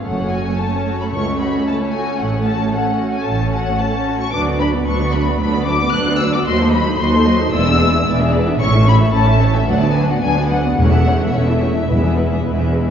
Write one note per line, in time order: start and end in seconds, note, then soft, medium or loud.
0.05 0.51 F#1 medium
0.05 0.51 F#2 medium
0.05 0.18 A3 medium
0.05 4.34 A3 medium
0.05 4.29 C#4 medium
0.05 4.29 C#5 medium
0.05 0.32 F#5 medium
0.19 0.33 C#4 soft
0.31 0.47 F#4 soft
0.31 0.59 G#5 medium
0.47 0.60 C#4 medium
0.60 0.73 A3 medium
0.60 1.00 A5 medium
0.74 0.87 C#4 medium
0.87 1.00 F#4 medium
1.00 1.13 C#4 soft
1.00 1.06 B5 medium
1.13 1.58 C#2 medium
1.13 1.26 A3 medium
1.13 1.40 C#6 medium
1.27 1.40 C#4 medium
1.40 1.54 F#4 medium
1.40 1.66 B5 medium
1.55 1.68 C#4 medium
1.67 1.81 A3 medium
1.67 1.75 A5 medium
1.82 1.94 C#4 medium
1.93 2.07 F#4 medium
1.93 2.20 G#5 medium
2.07 2.21 C#4 medium
2.20 2.65 A1 medium
2.20 2.65 A2 medium
2.20 2.33 A3 medium
2.20 2.47 F#5 medium
2.33 2.47 C#4 medium
2.46 2.60 F#4 medium
2.46 2.73 A5 medium
2.60 2.73 C#4 medium
2.73 2.87 A3 medium
2.73 3.13 F#5 medium
2.86 3.00 C#4 medium
3.00 3.13 F#4 medium
3.13 3.27 C#4 medium
3.13 3.27 G#5 medium
3.25 3.71 A1 medium
3.25 3.71 A2 medium
3.25 3.38 A3 medium
3.25 3.53 A5 medium
3.39 3.53 C#4 medium
3.53 3.67 F#4 medium
3.53 3.79 F#5 medium
3.67 3.80 C#4 medium
3.80 3.94 A3 medium
3.80 4.20 A5 medium
3.94 4.07 C#4 medium
4.07 4.20 F#4 medium
4.20 4.34 C#4 medium
4.20 4.33 C#6 medium
4.32 4.81 D2 medium
4.32 4.46 F#3 medium
4.32 4.46 D4 medium
4.32 4.46 B4 medium
4.32 4.40 D6 loud
4.45 4.61 B3 medium
4.45 4.60 F#4 medium
4.45 4.59 D5 medium
4.60 4.74 F#3 medium
4.60 4.73 D4 medium
4.60 4.74 D4 medium
4.60 4.73 B4 medium
4.60 4.68 B5 medium
4.73 4.87 B3 medium
4.73 4.87 F#4 medium
4.73 4.87 D5 medium
4.86 5.34 D2 medium
4.86 5.35 D2 medium
4.86 5.00 F#3 medium
4.86 4.99 D4 medium
4.86 5.00 D4 medium
4.86 4.99 B4 medium
4.86 5.14 C#6 medium
5.00 5.14 B3 medium
5.00 5.14 F#4 medium
5.00 5.14 D5 medium
5.13 5.27 F#3 medium
5.13 5.27 D4 medium
5.13 5.27 B4 medium
5.13 5.39 B5 medium
5.27 5.41 B3 medium
5.27 5.41 F#4 medium
5.27 5.41 D5 medium
5.40 5.88 D2 medium
5.40 5.53 F#3 medium
5.40 5.53 D4 medium
5.40 5.54 D4 medium
5.40 5.53 B4 medium
5.40 5.67 B5 loud
5.54 5.68 B3 medium
5.54 5.68 F#4 medium
5.54 5.67 D5 medium
5.67 5.81 F#3 medium
5.67 5.81 D4 medium
5.67 5.81 B4 medium
5.67 5.93 D6 loud
5.81 5.94 B3 medium
5.81 5.94 F#4 medium
5.81 5.94 D5 medium
5.94 6.41 D2 medium
5.94 6.06 F#3 medium
5.94 6.07 D4 medium
5.94 6.07 B4 medium
5.94 6.20 F#6 loud
6.08 6.21 B3 medium
6.08 6.21 F#4 medium
6.08 6.21 D5 medium
6.20 6.34 F#3 medium
6.20 6.34 D4 medium
6.20 6.34 B4 medium
6.20 6.34 E6 medium
6.34 6.48 B3 medium
6.34 6.47 F#4 medium
6.34 6.47 D5 medium
6.34 6.39 D6 loud
6.46 6.94 D#2 medium
6.46 6.60 F#3 medium
6.46 6.60 F#4 medium
6.46 6.59 C5 medium
6.46 6.60 D#5 medium
6.46 6.72 C6 loud
6.60 6.74 A3 medium
6.60 6.74 D#4 medium
6.60 6.74 A4 medium
6.60 6.72 C5 medium
6.73 6.87 F#3 medium
6.73 6.87 F#4 medium
6.73 6.85 C5 medium
6.73 6.87 D#5 medium
6.73 6.99 B5 loud
6.86 7.01 A3 medium
6.86 7.00 D#4 medium
6.86 7.00 A4 medium
6.86 6.99 C5 medium
7.00 7.47 D#2 medium
7.00 7.13 F#3 medium
7.00 7.13 F#4 medium
7.00 7.12 C5 medium
7.00 7.12 D#5 medium
7.00 7.53 C6 loud
7.13 7.27 A3 medium
7.13 7.27 D#4 medium
7.13 7.27 A4 medium
7.13 7.25 C5 medium
7.26 7.40 F#3 medium
7.26 7.40 F#4 medium
7.26 7.39 C5 medium
7.26 7.40 D#5 medium
7.40 7.53 A3 medium
7.40 7.53 D#4 medium
7.40 7.53 A4 medium
7.40 7.53 C5 medium
7.52 8.00 E1 medium
7.52 8.00 E2 medium
7.52 7.66 G#3 medium
7.52 7.66 E4 medium
7.52 7.65 B4 medium
7.52 7.65 D5 medium
7.52 8.05 E6 loud
7.66 7.80 B3 medium
7.66 7.80 D4 medium
7.66 7.80 G#4 medium
7.66 7.80 E5 medium
7.79 7.93 G#3 medium
7.79 7.93 E4 medium
7.79 7.93 B4 medium
7.79 7.93 D5 medium
7.93 8.07 B3 medium
7.93 8.07 D4 medium
7.93 8.07 G#4 medium
7.93 8.07 E5 medium
8.06 8.54 E1 medium
8.06 8.54 E2 medium
8.06 8.19 G#3 medium
8.06 8.19 E4 medium
8.06 8.19 B4 medium
8.06 8.19 D5 medium
8.19 8.33 B3 medium
8.19 8.33 D4 medium
8.19 8.34 G#4 medium
8.19 8.34 E5 medium
8.33 8.47 G#3 medium
8.33 8.47 E4 medium
8.33 8.47 B4 medium
8.33 8.47 D5 medium
8.47 8.60 B3 medium
8.47 8.60 D4 medium
8.47 8.61 G#4 medium
8.47 8.61 E5 medium
8.60 9.08 A1 medium
8.60 9.08 A2 loud
8.60 8.73 C#4 medium
8.60 8.73 E4 medium
8.60 8.73 C#5 medium
8.60 8.85 C#6 loud
8.74 8.87 A3 medium
8.74 8.86 C#4 medium
8.74 8.88 A4 medium
8.74 8.88 E5 medium
8.87 9.00 C#4 medium
8.87 9.01 E4 medium
8.87 9.01 C#5 medium
8.87 8.96 B5 loud
9.00 9.14 A3 medium
9.00 9.13 C#4 medium
9.00 9.14 A4 medium
9.00 9.14 E5 medium
9.13 9.61 A1 medium
9.13 9.62 A2 medium
9.13 9.26 C#4 medium
9.13 9.26 E4 medium
9.13 9.27 C#5 medium
9.13 9.54 A5 medium
9.27 9.41 A3 medium
9.27 9.39 C#4 medium
9.27 9.41 A4 medium
9.27 9.41 E5 medium
9.40 9.53 C#4 medium
9.40 9.54 E4 medium
9.40 9.55 C#5 medium
9.54 9.68 A3 medium
9.54 9.68 C#4 medium
9.54 9.68 A4 medium
9.54 9.68 E5 medium
9.67 10.16 D2 medium
9.67 9.81 F#3 medium
9.67 9.80 D4 medium
9.67 9.80 B4 medium
9.67 9.81 F#5 loud
9.81 9.95 B3 medium
9.81 9.95 F#4 medium
9.81 9.95 D5 medium
9.81 9.95 A5 medium
9.94 10.09 F#3 medium
9.94 10.09 D4 medium
9.94 10.09 B4 medium
9.94 10.09 G#5 medium
10.08 10.23 B3 medium
10.08 10.22 F#4 medium
10.08 10.22 D5 medium
10.08 10.23 F#5 medium
10.22 10.72 D2 medium
10.22 10.35 F#3 medium
10.22 10.35 D4 medium
10.22 10.36 D4 medium
10.22 10.36 B4 medium
10.22 10.49 G#5 medium
10.36 10.50 B3 medium
10.36 10.51 F#4 medium
10.36 10.51 D5 medium
10.49 10.65 F#3 medium
10.49 10.65 D4 medium
10.49 10.65 B4 medium
10.49 10.76 F#5 medium
10.65 10.79 B3 medium
10.65 10.78 F#4 medium
10.65 10.79 D5 medium
10.77 11.28 E1 medium
10.77 11.28 E2 medium
10.77 11.58 E2 medium
10.77 10.92 A3 medium
10.77 10.92 C#4 medium
10.77 10.92 E4 medium
10.77 10.92 C#5 medium
10.77 11.32 F#5 loud
10.93 11.06 E3 medium
10.93 11.07 E4 medium
10.93 11.07 A4 medium
10.93 11.06 E5 medium
11.07 11.20 A3 soft
11.07 11.20 C#4 soft
11.07 11.20 E4 medium
11.07 11.20 C#5 medium
11.20 11.34 E3 medium
11.20 11.34 E4 medium
11.20 11.34 A4 soft
11.20 11.34 E5 medium
11.33 11.83 E1 medium
11.33 11.83 E2 medium
11.33 11.47 A3 medium
11.33 11.47 C#4 medium
11.33 11.47 E4 medium
11.33 11.47 C#5 medium
11.33 12.45 E5 medium
11.48 11.62 E3 soft
11.48 11.62 E4 medium
11.48 11.62 A4 medium
11.48 11.62 E5 medium
11.61 11.76 A3 medium
11.61 11.76 C#4 medium
11.61 11.76 E4 medium
11.61 11.76 C#5 medium
11.75 11.90 E3 medium
11.75 11.88 E4 medium
11.75 11.90 A4 soft
11.75 11.90 E5 medium
11.89 12.39 E1 medium
11.89 12.69 E2 medium
11.89 12.39 E2 medium
11.89 12.02 G#3 medium
11.89 12.02 E4 medium
11.89 12.03 B4 medium
12.03 12.17 E3 medium
12.03 12.17 B3 soft
12.03 12.18 G#4 medium
12.03 12.18 E5 medium
12.17 12.31 G#3 medium
12.17 12.31 E4 medium
12.17 12.31 B4 medium
12.31 12.45 E3 medium
12.31 12.45 B3 soft
12.31 12.45 G#4 medium
12.31 12.45 E5 medium
12.45 12.90 E1 medium
12.45 12.90 E2 medium
12.45 12.58 G#3 medium
12.45 12.58 E4 medium
12.45 12.58 B4 medium
12.59 12.73 E3 soft
12.59 12.73 B3 medium
12.59 12.73 G#4 medium
12.59 12.73 E5 medium
12.73 12.87 G#3 medium
12.73 12.87 E4 medium
12.73 12.87 B4 medium
12.86 12.90 E3 soft
12.86 12.90 G#4 medium
12.86 12.90 E5 soft